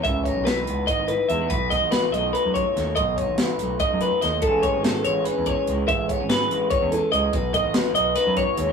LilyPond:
<<
  \new Staff \with { instrumentName = "Clean electric guitar" } { \time 7/8 \key b \mixolydian \tempo 4 = 144 e''8 cis''8 b'4 dis''8 b'8 e''8 | b'8 dis''8 b'8 dis''8 b'8 cis''4 | dis''8 cis''8 b'4 dis''8 b'8 dis''8 | a'8 cis''8 a'8 cis''8 b'8 cis''4 |
e''8 cis''8 b'4 cis''8 a'8 dis''8 | b'8 dis''8 b'8 dis''8 b'8 cis''4 | }
  \new Staff \with { instrumentName = "Clean electric guitar" } { \clef bass \time 7/8 \key b \mixolydian << { r8 dis'4 b8 dis'4 gis16 b16 | r8 dis'4 a8 dis'4 a8 | r8 dis'4 a8 dis'4 a8 | <e gis cis' gis'>8 cis'4 gis8 cis'4 gis8~ |
gis8 b16 cis'8. gis8 b16 cis'8. gis8 | r8 dis'4 b8 dis'4 gis16 b16 | } \\ { <cis e>4 e4. e4 | b,4 fis4. fis4 | b,4 fis4. fis4 | r4 e4. e4~ |
e4 e4. e4 | b,4 fis4. fis4 | } >> }
  \new Staff \with { instrumentName = "Fingered electric bass" } { \clef bass \time 7/8 \key b \mixolydian cis,8. b,,8. cis,8 r16 gis,,8 r16 e,8 | b,,8. a,,8. b,,8 r16 fis,8 r16 dis,8 | b,,8. a,,8. b,,8 r16 fis,8 r16 dis,8 | a,,8. gis,,8. a,,8 r16 e,8 r16 cis,8 |
a,,8. gis,,8. a,,8 r16 e,8 r16 cis,8 | b,,8. a,,8. b,,8 r16 fis,8 r16 dis,8 | }
  \new DrumStaff \with { instrumentName = "Drums" } \drummode { \time 7/8 <hh bd>8 <hh bd>8 <hh sn>8 hh8 <hh bd>8 hh8 hh8 | <hh bd>8 <hh bd sn>8 <hh sn>8 hh8 hh8 <hh bd>8 <hh sn>8 | <hh bd>8 <hh bd>8 <hh sn>8 hh8 <hh bd>8 hh8 <hh sn>8 | <hh bd>8 <hh bd>8 <hh sn>8 hh8 hh8 <hh bd>8 hh8 |
<hh bd>8 <hh bd>8 <hh sn>8 hh8 <hh bd>8 hh8 hh8 | <hh bd>8 <hh bd>8 <hh sn>8 hh8 hh8 <hh bd>8 hh8 | }
>>